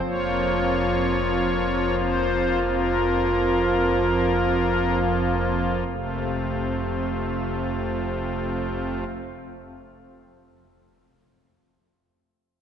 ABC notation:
X:1
M:4/4
L:1/8
Q:1/4=36
K:F
V:1 name="Pipe organ"
_d3 c B3 z | [F,,C,A,CF]8 |]
V:2 name="Pipe organ" clef=bass
[F,,,F,,F,B,F]8 | F,,,8 |]